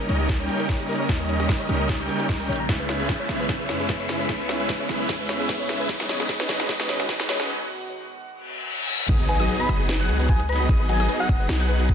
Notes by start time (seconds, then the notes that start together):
Already playing: C#3 G3 A#3 D#4, riser
0.09 C#2 G3 C#4 D#4 A#4 C#5 D#5, closed hi-hat
0.20 G4
0.29 A#4, kick, snare, closed hi-hat
0.40 G3 C#4 D#4 A#4 C#5 G5
0.49 G4, closed hi-hat
0.60 A#4, closed hi-hat
0.69 G3 C#4 D#4 A#4 C#5, kick, snare, closed hi-hat
0.80 G4, closed hi-hat
0.89 A#4, closed hi-hat
0.93 closed hi-hat
0.96 closed hi-hat
1.00 C#5
1.09 D#2 G3 C#4 D#4 G4 A#4 D#5, kick, snare, closed hi-hat
1.20 A#4
1.29 C#5, closed hi-hat
1.40 G3 C#4 D#4 G4 A#4 D#5, closed hi-hat
1.49 A#4, kick, snare, closed hi-hat
1.60 C#5
1.69 C#2 G3 C#4 D#4 G4 A#4 D#5, closed hi-hat
1.80 A#4
1.89 C#5, kick, snare, closed hi-hat
1.99 G3 C#4 D#4 G4 A#4 G5
2.09 G4, closed hi-hat
2.20 G4, closed hi-hat
2.29 C#2 G3 C#4 D#5, kick, snare, closed hi-hat
2.40 G3 C#4 D#4 A#4 G5 A#5, closed hi-hat
2.49 A#1 C#5, closed hi-hat
2.53 closed hi-hat
2.56 closed hi-hat
2.60 A#5
2.69 C#2 G#3 B3 C#4 E4 G#4 E5, kick, snare, closed hi-hat
2.80 B4
2.89 C#5, snare, closed hi-hat
3.00 G#3 C#4 E4 G#4 B4 E5, closed hi-hat
3.09 B4, kick, snare, closed hi-hat
3.20 C#5
3.29 B1 G#3 C#4 E4 G#4 B4 E5, snare, closed hi-hat
3.40 B4
3.49 G#3 C#4 G#4, kick, snare, closed hi-hat
3.60 B4
3.69 F#2 C#5, snare, closed hi-hat
3.80 G#3 C#4 E4 G#4 B4 E5, closed hi-hat
3.89 B4, kick, snare, closed hi-hat
4.00 C#5, closed hi-hat
4.09 G#3 C#4 E4 G#4 B4 E5, snare, closed hi-hat
4.13 closed hi-hat
4.16 closed hi-hat
4.20 B4
4.29 C#2 G#3 C#4 E4 G#4 B4 E5, kick, snare, closed hi-hat
4.40 B4
4.49 C#5, snare, closed hi-hat
4.60 G#3 C#4 E4 G#4 B4 E5, closed hi-hat
4.69 B4, kick, snare, closed hi-hat
4.80 C#5
4.89 B1 G#3 C#4 E4 G#4 B4 E5, snare, closed hi-hat
5.00 B4
5.09 E2 G#3 C#4 E4 G#4 E5, kick, snare, closed hi-hat
5.20 B4
5.29 C#5, snare, closed hi-hat
5.39 G#3 C#4 E4 G#4 B4 E5, closed hi-hat
5.49 B4, kick, snare, closed hi-hat
5.60 C#5, closed hi-hat
5.69 G#3 C#4 E4 G#4 B4 E5, snare, closed hi-hat
5.73 closed hi-hat
5.76 B4, closed hi-hat
5.89 B1 D#3 G#3 C#4 D#4 F#4 G#4 B4 D#5, kick, snare, closed hi-hat
6.00 B4, snare
6.09 C#5, snare, closed hi-hat
6.20 G#3 C#4 D#4 G#4 B4 D#5, snare, closed hi-hat
6.29 G#3 C#4 D#4 G#4 B4 D#5, kick, snare, closed hi-hat
6.40 B4, snare
6.49 G#1 C#5, snare, closed hi-hat
6.60 G#3 C#4 D#4 G#4 B4 D#5, snare
6.69 G#3 C#4 D#4 G#4 B4 D#5, kick, snare, closed hi-hat
6.80 B4, snare
6.89 C#5, snare, closed hi-hat
6.99 G#3 C#4 D#4 G#4 B4 D#5, snare, closed hi-hat
7.09 G#3 C#4 D#4 G#4 B4 D#5, kick, snare, closed hi-hat
7.20 B4, snare, closed hi-hat
7.29 C#5, snare, closed hi-hat
7.33 closed hi-hat
7.36 G#3 C#4 D#4 B4 D#5, closed hi-hat
7.40 G#4, snare
8.29 reverse cymbal
8.89 high tom
9.00 mid tom
9.09 G#1 F#3 B3 D#4 F#4 G#4 D#5 D#6, kick, closed hi-hat, crash, impact
9.20 G#4
9.29 B4 G#5, closed hi-hat
9.40 F#3 B3 D#4 F#4 G#4 D#5 D#6, closed hi-hat
9.49 G#4, closed hi-hat
9.60 B4 B5
9.69 F#1 F#3 B3 D#4 F#4 D#5 D#6, closed hi-hat
9.80 G#4
9.89 B4, snare, closed hi-hat
10.00 F#3 B3 D#4 F#4 G#4 F#5 F#6
10.09 C#2 G#4, closed hi-hat
10.20 B4, closed hi-hat
10.29 F#3 B3 D#4 F#4 G#5 D#6, kick, closed hi-hat
10.40 G#4, closed hi-hat
10.49 B4 B5, closed hi-hat
10.53 closed hi-hat
10.56 closed hi-hat
10.60 F#4
10.69 G#1 F#3 B3 D#4 G#4 D#5 D#6, kick, closed hi-hat
10.80 B4
10.89 F#4 G#5, closed hi-hat
11.00 F#3 B3 D#4 G#4 D#5 D#6, closed hi-hat
11.09 B4, closed hi-hat
11.20 F#4 F#5
11.29 F#1 F#3 B3 G#4 D#6, kick, closed hi-hat
11.40 B4
11.49 B1 F#4, snare, closed hi-hat
11.60 F#3 B3 D#4 G#4 F#5 F#6
11.69 B4, closed hi-hat
11.80 F#4, closed hi-hat
11.89 G3 C#4 D#4 G#4 A#4 D#5 D#6, kick, closed hi-hat